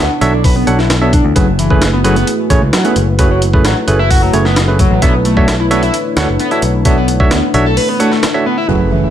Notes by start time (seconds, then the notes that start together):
Already playing: B3 D4 E4 A4 C#5
0.21 B1 D4 F#4 A4 C#5 E5, closed hi-hat
0.33 D4
0.44 B4, kick, open hi-hat
0.56 B3
0.67 B1 D4 F#4 A4 C#5 F#5, closed hi-hat
0.79 E4, snare
0.90 snare, closed hi-hat
1.01 B3 D4 F#4 A4 C#5 E5
1.13 D4, kick, closed hi-hat
1.24 D2
1.36 F#1 F#3 A3 C#4 E4 F#4 G#4 B4, kick, closed hi-hat
1.59 E3, closed hi-hat
1.70 E3 A3 C#4 E4 G#4 B4, kick
1.82 snare, closed hi-hat
1.93 B3
2.04 F#3 A3 C#4 E4 G#4 B4, closed hi-hat
2.16 B3, closed hi-hat
2.27 closed hi-hat
2.50 A1 A3 C#4 E4 G#4 C#5, kick, closed hi-hat
2.62 C#2
2.73 F#3, snare, closed hi-hat
2.85 A3 B3 C#4 E4 G#4 B4, closed hi-hat
2.96 F#1, closed hi-hat
3.18 F#3 A3 C#4 E4 G#4 A4 B4, kick, closed hi-hat
3.31 F#3
3.42 closed hi-hat
3.54 A3 C#4 E4 G#4 B4, kick
3.65 A1 F#3, snare, closed hi-hat
3.88 F#1 A3 C#4 E4 G#4 B4, closed hi-hat
3.99 E4
4.10 F#4, kick, open hi-hat
4.22 F#3
4.33 F#1 A3 C#4 E4 G#4 C#5, closed hi-hat
4.45 B3, snare
4.56 snare, closed hi-hat
4.68 A3 C#4 E4 G#4 B4
4.79 F#3, kick, closed hi-hat
4.91 A1
5.02 B1 A3 B3 D4 F#4 A4 C#5 E5, kick, closed hi-hat
5.25 A3, closed hi-hat
5.37 A3 D4 F#4 A4 C#5 E5, kick
5.48 snare, closed hi-hat
5.60 E4
5.71 B3 D4 F#4 A4 C#5 E5, closed hi-hat
5.83 E4, closed hi-hat
5.94 closed hi-hat
6.17 D2 D4 F#4 A4 C#5 F#5, snare, closed hi-hat
6.28 F#1
6.39 B3, closed hi-hat
6.51 D4 E4 F#4 A4 C#5 E5, closed hi-hat
6.62 B1, closed hi-hat
6.85 B3 D4 F#4 A4 C#5 E5, kick, closed hi-hat
6.97 B3
7.08 closed hi-hat
7.20 D4 F#4 A4 C#5 E5, kick
7.31 D2 B3, snare, closed hi-hat
7.54 B1 D4 F#4 A4 C#5 E5, closed hi-hat
7.66 A4
7.77 B4, open hi-hat
7.89 B3
8.00 A3 D4 F#4 A4 C#5 F#5, closed hi-hat
8.12 A3, snare
8.23 snare, closed hi-hat
8.34 D4 F#4 A4 C#5 E5
8.46 B3
8.58 E4
8.68 F#1 F#3 A3 C#4 E4 G#4 B4, impact
8.92 E3, closed hi-hat
9.04 E3